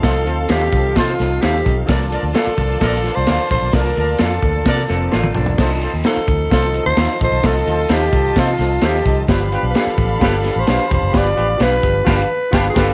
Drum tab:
CC |----------------|----------------|----------------|x---------------|
HH |x-x-x-x-x-x-x-x-|x-x-x-x-x-x-x-x-|x-x-x-x-x-x-----|--x-x-x-x-x-x-x-|
SD |o---o---o-o-o---|o---o---o-o-o---|o---o---o-o-o---|o---o---o---o---|
T1 |----------------|----------------|-------------o--|----------------|
T2 |----------------|----------------|--------------o-|----------------|
FT |----------------|----------------|---------------o|----------------|
BD |o-----o-o-----o-|o-----o-o-----o-|o-----o-o-------|o-----o-o-----o-|

CC |----------------|----------------|--------x-----x-|
HH |x-x-x-x-x-x-x-x-|x-x-x-x-x-x-x-x-|x-x-x-x---------|
SD |o---o---o-o-o---|o---o---o-o-o---|o---o---o---o-o-|
T1 |----------------|----------------|----------------|
T2 |----------------|----------------|----------------|
FT |----------------|----------------|----------------|
BD |o-----o-o-----o-|o-----o-o-----o-|o-----o-o---o-o-|